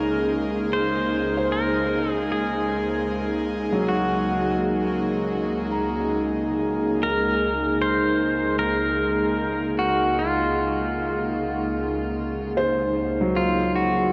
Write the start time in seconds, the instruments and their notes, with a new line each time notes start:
Already playing: analog synth pad C#2 G#3 A#3 D#4 G#4, synth drone C#3, pedal steel guitar A#4
0.73 analog synth pad C#2, pedal steel guitar C5
1.37 felt piano C5
1.52 pedal steel guitar A#4
2.11 pedal steel guitar G#4
2.32 pedal steel guitar G#4
3.72 felt piano F#3
3.89 pedal steel guitar F#4
5.71 felt piano A#5
7.03 pedal steel guitar A#4
7.81 pedal steel guitar C5
8.59 pedal steel guitar A#4
9.79 pedal steel guitar F#4
10.19 pedal steel guitar F4
12.57 felt piano C5
13.21 felt piano F#3
13.36 pedal steel guitar F4
13.76 pedal steel guitar F#4